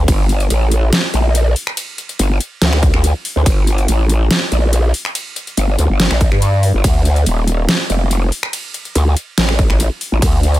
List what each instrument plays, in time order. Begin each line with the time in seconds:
0.08 wobble bass G1, kick, closed hi-hat, ride
0.29 closed hi-hat
0.40 closed hi-hat
0.50 wobble bass A1, closed hi-hat, ride
0.71 closed hi-hat
0.93 snare, closed hi-hat, ride
1.14 wobble bass A#1, closed hi-hat
1.35 closed hi-hat, ride
1.56 open hi-hat
1.67 finger snap
1.77 closed hi-hat, ride
1.98 closed hi-hat
2.09 closed hi-hat
2.19 wobble bass G1, closed hi-hat, ride
2.40 closed hi-hat
2.62 wobble bass D2, snare, closed hi-hat, ride
2.73 finger snap
2.83 kick, closed hi-hat
2.94 wobble bass D2, finger snap
3.04 closed hi-hat, ride
3.25 open hi-hat
3.36 wobble bass D2
3.46 wobble bass G1, kick, closed hi-hat, ride
3.67 closed hi-hat
3.78 closed hi-hat
3.88 wobble bass A1, closed hi-hat, ride
4.09 closed hi-hat
4.31 snare, closed hi-hat, ride
4.52 wobble bass A#1, closed hi-hat
4.73 closed hi-hat, ride
4.94 open hi-hat
5.05 finger snap
5.15 closed hi-hat, ride
5.36 closed hi-hat
5.47 closed hi-hat
5.57 wobble bass G1, closed hi-hat, ride
5.79 wobble bass D2, closed hi-hat
5.89 wobble bass G1
6.00 snare, closed hi-hat, ride
6.11 wobble bass A#1, finger snap
6.21 kick, closed hi-hat
6.32 wobble bass G2, finger snap
6.42 closed hi-hat, ride
6.63 open hi-hat
6.74 wobble bass G1
6.84 wobble bass D2, kick, closed hi-hat, ride
7.05 closed hi-hat
7.16 closed hi-hat
7.26 wobble bass D#1, closed hi-hat, ride
7.48 closed hi-hat
7.69 snare, closed hi-hat, ride
7.90 wobble bass F1, closed hi-hat
8.11 closed hi-hat, ride
8.32 open hi-hat
8.43 finger snap
8.53 closed hi-hat, ride
8.74 closed hi-hat
8.85 closed hi-hat
8.95 wobble bass D2, closed hi-hat, ride
9.17 closed hi-hat
9.38 wobble bass A1, snare, closed hi-hat, ride
9.49 finger snap
9.59 kick, closed hi-hat
9.70 wobble bass A1, finger snap
9.80 closed hi-hat, ride
10.01 open hi-hat
10.12 wobble bass A1
10.22 wobble bass D2, kick, closed hi-hat, ride
10.43 closed hi-hat
10.54 closed hi-hat